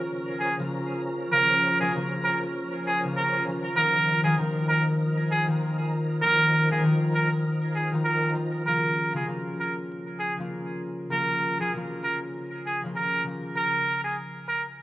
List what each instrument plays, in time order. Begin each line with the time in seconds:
Already playing: harp C#3 F3 A#3 F4, tonewheel organ F3 C#4 A#4
0.40 muted trumpet G#4
0.58 harp C#3 F3 A#3 F4
1.31 harp C#3 F3 A#3 F4, muted trumpet A#4
1.80 harp C#3 F3 A#3 F4, muted trumpet G#4
1.96 harp C#3 F3 A#3 F4
2.24 muted trumpet A#4
2.87 muted trumpet G#4
3.04 harp C#3 F3 A#3 F4
3.16 muted trumpet A#4
3.46 harp C#3 F3 A#3 F4
3.75 harp D#3 F3 A#3 F4, tonewheel organ D#4, muted trumpet A#4
4.23 harp D#3 F3 A#3 F4, muted trumpet G#4
4.39 harp D#3 F3 A#3 F4
4.69 muted trumpet A#4
5.31 muted trumpet G#4
5.47 harp D#3 F3 A#3 F4
6.22 harp D#3 F3 A#3 F4, muted trumpet A#4
6.69 harp D#3 F3 A#3 F4, muted trumpet G#4
6.82 harp D#3 F3 A#3 F4
7.15 muted trumpet A#4
7.75 muted trumpet G#4
7.92 harp D#3 F3 A#3 F4
8.05 muted trumpet A#4
8.33 harp D#3 F3 A#3 F4
8.66 harp C#3 F3 A#3 F4, muted trumpet A#4
9.13 harp C#3 F3 A#3 F4, muted trumpet G#4
9.27 harp C#3 F3 A#3 F4
9.60 muted trumpet A#4
10.19 muted trumpet G#4
10.37 harp C#3 F3 A#3 F4
11.10 harp C#3 F3 A#3 F4, muted trumpet A#4
11.59 harp C#3 F3 A#3 F4, muted trumpet G#4
11.75 harp C#3 F3 A#3 F4
12.04 muted trumpet A#4
12.66 muted trumpet G#4
12.83 harp C#3 F3 A#3 F4
12.96 muted trumpet A#4
13.25 harp C#3 F3 A#3 F4
13.56 muted trumpet A#4
14.04 muted trumpet G#4
14.48 muted trumpet A#4